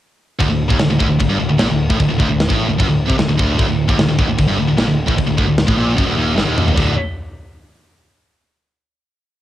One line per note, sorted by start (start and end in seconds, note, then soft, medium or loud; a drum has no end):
0.39 0.50 D1 medium
0.39 0.48 D2 loud
0.39 kick loud
0.39 crash medium
0.49 0.69 D1 medium
0.49 0.66 D2 medium
0.69 0.79 D#1 medium
0.69 0.79 D#2 loud
0.69 kick loud
0.80 0.91 D1 medium
0.80 0.89 D2 medium
0.80 snare loud
0.80 crash medium
0.90 1.00 D1 medium
0.90 0.98 D2 medium
0.99 1.09 D1 loud
0.99 1.08 D2 loud
0.99 kick loud
1.09 1.20 D1 medium
1.09 1.18 D2 medium
1.19 1.29 D1 medium
1.19 1.29 D2 medium
1.19 kick medium
1.19 crash medium
1.30 1.40 G1 medium
1.30 1.39 G2 loud
1.39 1.50 D1 medium
1.39 1.48 D2 medium
1.49 1.60 D1 medium
1.49 1.59 D2 medium
1.59 1.70 A#1 loud
1.59 1.69 A#2 loud
1.59 snare loud
1.59 crash medium
1.69 1.89 D1 medium
1.69 1.85 D2 medium
1.90 1.99 A1 medium
1.90 1.99 A2 loud
1.90 kick loud
1.99 2.09 D1 medium
1.99 2.07 D2 medium
1.99 kick medium
1.99 crash medium
2.08 2.19 D1 medium
2.08 2.17 D2 medium
2.18 2.28 D1 loud
2.18 2.27 D2 loud
2.18 kick loud
2.28 2.47 D1 medium
2.28 2.45 D2 medium
2.40 snare loud
2.40 crash medium
2.49 2.68 A1 medium
2.49 2.68 A2 loud
2.49 kick loud
2.68 2.78 D1 medium
2.68 2.78 D2 medium
2.78 2.87 F#1 loud
2.78 2.88 F#2 loud
2.78 kick loud
2.78 crash medium
2.88 3.07 D1 medium
2.88 3.05 D2 medium
3.08 3.19 C2 loud
3.08 3.17 C3 loud
3.08 kick loud
3.17 3.28 D1 medium
3.17 3.27 D2 medium
3.17 snare loud
3.17 crash medium
3.28 3.38 D1 medium
3.28 3.38 D2 medium
3.39 3.58 D1 loud
3.39 3.57 D2 loud
3.39 kick loud
3.58 3.68 D1 loud
3.58 3.67 D2 loud
3.58 kick loud
3.58 crash medium
3.68 3.87 D1 medium
3.68 3.84 D2 medium
3.88 3.98 D#1 medium
3.88 3.97 D#2 loud
3.88 kick loud
3.98 4.08 D1 medium
3.98 4.08 D2 medium
3.98 snare loud
3.98 crash medium
4.09 4.18 D1 medium
4.09 4.17 D2 medium
4.18 4.28 D1 medium
4.18 4.26 D2 loud
4.18 kick loud
4.28 4.38 D1 medium
4.28 4.37 D2 medium
4.38 4.48 D1 medium
4.38 4.47 D2 medium
4.38 kick loud
4.38 crash medium
4.48 4.58 G1 loud
4.48 4.57 G2 loud
4.57 4.68 D1 medium
4.57 4.66 D2 medium
4.68 4.78 D1 medium
4.68 4.76 D2 medium
4.77 4.88 A#1 loud
4.77 4.86 A#2 loud
4.77 snare loud
4.77 crash medium
4.86 5.07 D1 medium
4.86 5.03 D2 medium
5.07 5.17 A1 loud
5.07 5.17 A2 loud
5.07 kick loud
5.17 5.27 D1 medium
5.17 5.26 D2 medium
5.17 kick loud
5.17 crash medium
5.27 5.37 D1 medium
5.27 5.36 D2 medium
5.37 5.47 D1 loud
5.37 5.45 D2 loud
5.37 kick loud
5.46 5.66 D1 medium
5.46 5.63 D2 medium
5.58 snare loud
5.58 crash medium
5.67 5.77 A1 medium
5.67 5.76 A2 loud
5.67 kick loud
5.77 5.96 A#1 loud
5.77 5.96 A#2 loud
5.96 6.07 F#1 medium
5.96 6.06 F#2 loud
5.96 kick loud
5.96 crash medium
6.06 6.16 D1 loud
6.06 6.16 D2 medium
6.17 6.36 D#1 loud
6.17 6.35 D#2 loud
6.36 6.46 G1 loud
6.36 6.45 G2 loud
6.36 snare medium
6.46 6.75 D#1 medium
6.46 6.74 D#2 loud
6.58 mid tom medium
6.68 floor tom medium
6.74 6.96 D1 loud
6.74 6.92 D2 loud
6.74 6.92 A2 loud
6.74 6.92 D3 medium
6.74 kick loud
6.74 floor tom loud
6.74 crash medium